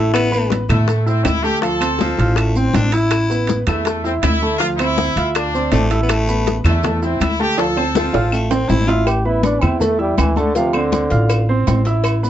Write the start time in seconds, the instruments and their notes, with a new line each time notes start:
Already playing: upright bass A1, baritone saxophone A3, grand piano E4 E5 E6
0.14 baritone saxophone B3, high bongo, high conga, high timbale, claves, maracas
0.32 grand piano B3 B4 B5, high bongo, high conga, maracas
0.50 high bongo, high conga, high timbale, low timbale, maracas
0.69 upright bass A2, trumpet section A3 A4, grand piano E4 E5 E6, high bongo, high conga, low conga, high timbale, claves, maracas
0.88 grand piano A3 A4 A5, high bongo, high timbale, maracas
1.06 trumpet section C4 C5, grand piano E4 E5 E6, high conga, maracas
1.24 upright bass D2, trumpet section E4 E5, high bongo, low bongo, high conga, high timbale, low timbale, claves, maracas
1.43 grand piano A3 A4 A5, trumpet section G4 G5, high bongo, maracas
1.62 grand piano F3 F4 F5, trumpet section A4 A5, high bongo, high conga, high timbale, maracas
1.80 grand piano C4 C5 C6, high bongo, high conga, high timbale, claves, maracas
1.99 baritone saxophone F3, high bongo, high conga, low timbale, maracas
2.18 upright bass A1, grand piano F4 F5 F6, high bongo, high timbale, maracas
2.36 baritone saxophone A3, high bongo, high conga, high timbale, claves, maracas
2.56 grand piano C4 C5 C6, baritone saxophone C4, high conga, maracas
2.74 upright bass A1, baritone saxophone D4, high bongo, low bongo, high conga, high timbale, low timbale, maracas
2.92 grand piano E4 E5 E6, baritone saxophone E4, high bongo, high conga, high timbale, maracas
3.11 high bongo, high conga, high timbale, claves, maracas
3.30 grand piano B3 B4 B5, high bongo, high conga, maracas
3.47 high bongo, high conga, high timbale, low timbale, maracas
3.67 upright bass E2, trumpet section A3 A4, grand piano E4 E5 E6, high bongo, high conga, low conga, high timbale, claves, maracas
3.85 grand piano A3 A4 A5, high bongo, high timbale, maracas
4.04 trumpet section C4 C5, grand piano E4 E5 E6, high conga, maracas
4.22 upright bass D2, trumpet section E4 E5, high bongo, low bongo, high conga, high timbale, low timbale, claves, maracas
4.42 grand piano A3 A4 A5, high bongo, maracas
4.58 grand piano F3 F4 F5, trumpet section F4 F5, high bongo, high conga, high timbale, maracas
4.77 grand piano C4 C5 C6, trumpet section E4 E5, high bongo, high conga, high timbale, claves, maracas
4.98 high bongo, high conga, low timbale, maracas
5.16 upright bass D2, grand piano F4 F5 F6, high bongo, high conga, high timbale, maracas
5.34 trumpet section D4 D5, high bongo, high conga, high timbale, claves, maracas
5.54 grand piano C4 C5 C6, high conga, maracas
5.72 upright bass A1, baritone saxophone A3, high bongo, low bongo, high conga, high timbale, low timbale, maracas
5.91 grand piano E4 E5 E6, high bongo, high timbale, maracas
6.03 baritone saxophone B3
6.09 baritone saxophone A3, high bongo, high conga, high timbale, claves, maracas
6.28 grand piano B3 B4 B5, high bongo, high conga, maracas
6.47 high bongo, high conga, high timbale, low timbale, maracas
6.64 upright bass E2, trumpet section A3 A4, grand piano E4 E5 E6, high bongo, high conga, low conga, high timbale, claves, maracas
6.83 grand piano A3 A4 A5, high bongo, high conga, low conga, high timbale, maracas
7.02 trumpet section C4 C5, grand piano E4 E5 E6, high conga, maracas
7.20 upright bass D2, trumpet section E4 E5, high bongo, low bongo, high conga, high timbale, low timbale, claves, maracas
7.39 grand piano A3 A4 A5, trumpet section G4 G5, high bongo, maracas
7.58 grand piano F3 F4 F5, trumpet section A4 A5, high bongo, high conga, high timbale, maracas
7.77 grand piano C4 C5 C6, high bongo, high conga, high timbale, claves
7.95 baritone saxophone F3, high bongo, high conga, low timbale, maracas
8.13 upright bass A1, grand piano F4 F5 F6, high bongo, high conga, high timbale, maracas
8.32 baritone saxophone A3, high conga, low timbale, claves, maracas
8.51 grand piano C4 C5 C6, baritone saxophone C4, low bongo, high conga, low timbale, maracas
8.68 upright bass A1, baritone saxophone E4, low bongo, high conga, low timbale, maracas
8.88 grand piano E4 E5 E6, baritone saxophone F4, low bongo, high conga, low timbale, maracas
9.06 trombone G4, cowbell, high conga, low agogo, claves, maracas
9.25 grand piano B3 B4 B5, trombone E4, high conga
9.43 trombone D4, cowbell, high conga, low timbale, low agogo, maracas
9.61 upright bass E2, trombone C4, grand piano E4 E5 E6, high conga, low conga, low agogo, claves, maracas
9.80 grand piano A3 A4 A5, trombone A3, cowbell, high conga, low conga, maracas
9.99 trombone G3, grand piano E4 E5 E6, high conga
10.18 upright bass D2, trombone E3, cowbell, high conga, low timbale, low agogo, claves, maracas
10.36 trombone D3, grand piano A3 A4 A5, high conga, low agogo, maracas
10.55 trombone C3, grand piano F3 F4 F5, cowbell, high conga, maracas
10.73 trombone D3, grand piano C4 C5 C6, high conga, low agogo, claves
10.92 cowbell, high conga, low timbale, low agogo, maracas
11.10 upright bass A1, grand piano F4 F5 F6, cowbell, high conga, maracas
11.29 cowbell, high conga, low agogo, claves, maracas
11.49 grand piano C4 C5 C6, high conga
11.67 upright bass A1, cowbell, high conga, low timbale, low agogo, maracas
11.85 grand piano E4 E5 E6, cowbell, maracas
12.04 cowbell, high conga, low agogo, claves, maracas
12.23 grand piano B3 B4 B5, high conga, maracas